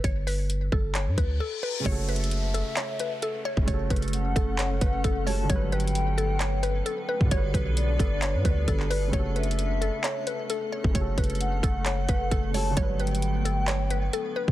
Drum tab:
HH |x-----------o-----------x-----------------------x-----------x-----------------------------------|x-----------x---x---x---x-----------x-----------x-----------x-----------x-----------------------|x-----------x--x--x--x--x-----------x-----------x-----------x-----------x-----------o-----------|x-----------x---x---x---x-----------x-----------x-----------x-----------x-----------------------|
CP |------------------------------------------------x-----------------------------------------------|------------------------------------------------x-----------------------------------------------|------------------------------------------------x-----------------------------------------------|------------------------------------------------x-----------------------------------------------|
BD |o-----------------------------------o-----------------------o-----------------------------------|o-----------------------------------------------------------------------------------------o-----|o-----------o-----------------------o-----------------------o-----------o-----------------------|o-----------------------------------------------------------------------------------------o-----|

HH |x-----------x-----------x-----------x-----------x-----------x-----------x-----------o-----------|x-----------x---x---x---x-----------x-----------x-----------x-----------x-----------------------|x-----------x--x--x--x--x-----------x-----------x-----------x-----------x-----------o-----------|x-----------x---x---x---x-----------x-----------x-----------x-----------x-----------------------|
CP |------------------------------------------------x-----------------------------x-----------------|------------------------------------------------x-----------------------------------------------|------------------------------------------------x-----------------------------------------------|------------------------------------------------x-----------------------------------------------|
BD |o-----------o-----------------------o-----------------------o-----------o-----------------------|o-----------------------------------------------------------------------------------------o-----|o-----------o-----------------------o-----------------------o-----------o-----------------------|o-----------------------------------------------------------------------------------------o-----|